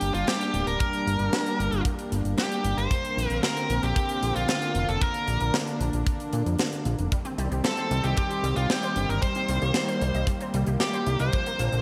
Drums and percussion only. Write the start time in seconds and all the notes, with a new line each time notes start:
0.01 closed hi-hat
0.14 closed hi-hat
0.27 snare, closed hi-hat
0.41 closed hi-hat
0.54 closed hi-hat
0.67 closed hi-hat
0.80 kick, closed hi-hat
0.93 closed hi-hat
1.08 closed hi-hat
1.19 closed hi-hat
1.33 snare, closed hi-hat
1.46 closed hi-hat
1.60 closed hi-hat
1.72 closed hi-hat
1.85 kick, closed hi-hat
1.99 closed hi-hat
2.12 closed hi-hat
2.25 closed hi-hat
2.38 snare, closed hi-hat
2.52 closed hi-hat
2.65 closed hi-hat
2.78 closed hi-hat
2.91 kick, closed hi-hat
3.05 closed hi-hat
3.19 closed hi-hat
3.30 closed hi-hat
3.43 snare, closed hi-hat
3.57 closed hi-hat
3.70 closed hi-hat
3.83 closed hi-hat
3.96 kick, closed hi-hat
4.09 closed hi-hat
4.23 closed hi-hat
4.36 closed hi-hat
4.48 snare, closed hi-hat
4.62 closed hi-hat
4.75 closed hi-hat
4.89 closed hi-hat
5.01 kick, closed hi-hat
5.14 closed hi-hat
5.28 closed hi-hat
5.40 closed hi-hat
5.54 snare, closed hi-hat
5.67 closed hi-hat
5.81 closed hi-hat
5.93 closed hi-hat
6.07 kick, closed hi-hat
6.20 closed hi-hat
6.33 closed hi-hat
6.46 closed hi-hat
6.58 snare, closed hi-hat
6.73 closed hi-hat
6.85 closed hi-hat
6.99 closed hi-hat
7.12 kick, closed hi-hat
7.25 closed hi-hat
7.38 closed hi-hat
7.52 closed hi-hat
7.64 snare, closed hi-hat
7.77 closed hi-hat
7.91 closed hi-hat
8.04 closed hi-hat
8.17 kick, closed hi-hat
8.31 closed hi-hat
8.44 closed hi-hat
8.56 closed hi-hat
8.70 snare, closed hi-hat
8.83 closed hi-hat
8.96 closed hi-hat
9.10 closed hi-hat
9.22 kick, closed hi-hat
9.35 closed hi-hat
9.48 closed hi-hat
9.62 closed hi-hat
9.74 snare, closed hi-hat
9.88 closed hi-hat
10.01 closed hi-hat
10.15 closed hi-hat
10.27 kick, closed hi-hat
10.41 closed hi-hat
10.54 closed hi-hat
10.66 closed hi-hat
10.80 snare, closed hi-hat
10.94 closed hi-hat
11.06 closed hi-hat
11.19 closed hi-hat
11.33 kick, closed hi-hat
11.46 closed hi-hat
11.59 closed hi-hat
11.72 closed hi-hat